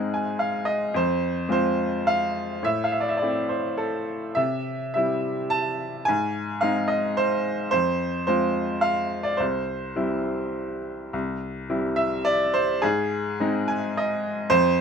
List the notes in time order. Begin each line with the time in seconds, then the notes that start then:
Already playing: G#2 G#3 C4 D#4 G#4
0.14 G#5
0.39 F5
0.65 D#5
0.94 F2 C5
1.49 G#3 C4 F4 C5
2.07 F5
2.63 A2 E5
2.84 F5
2.92 E5
3.00 D5
3.09 E5
3.17 D5
3.22 A3 C4 E4
3.49 C5
3.77 A4
4.35 C3 E5
4.94 G3 C4 E4 E5
5.50 A5
6.05 G#2 G#5
6.61 G#3 C4 D#4 F5
6.88 D#5
7.17 C5
7.71 F2 C5
8.27 G#3 C4 F4 C5
8.81 F5
9.23 D5
9.37 C2 C5
9.96 G3 C4 E4
11.13 C2
11.70 G3 C4 E4
11.96 E5
12.25 D5
12.54 C5
12.82 G#2 G#4
13.40 G#3 C4 D#4
13.68 G#5
13.97 D#5
14.50 F2 C5